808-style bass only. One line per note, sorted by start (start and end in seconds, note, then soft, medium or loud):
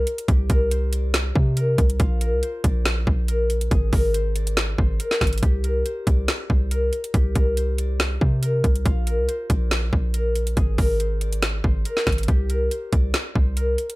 0.28 0.49 C2 loud
0.50 1.32 C2 loud
1.36 1.77 C3 loud
1.78 1.99 C2 loud
2.00 2.34 A#1 loud
2.33 2.42 C2 loud
2.64 3.05 A#1 loud
3.07 3.69 A#1 loud
3.71 3.92 G#1 loud
3.93 4.75 G#1 loud
4.78 4.99 G#1 loud
5.21 5.42 G#1 loud
5.43 5.84 C2 loud
6.07 6.28 C2 loud
6.50 6.91 C2 loud
7.14 7.35 C2 loud
7.36 8.18 C2 loud
8.21 8.62 C3 loud
8.64 8.85 C2 loud
8.86 9.20 A#1 loud
9.18 9.28 C2 loud
9.50 9.91 A#1 loud
9.93 10.54 A#1 loud
10.57 10.77 G#1 loud
10.78 11.61 G#1 loud
11.64 11.85 G#1 loud
12.07 12.27 G#1 loud
12.28 12.69 C2 loud
12.93 13.13 C2 loud
13.35 13.77 C2 loud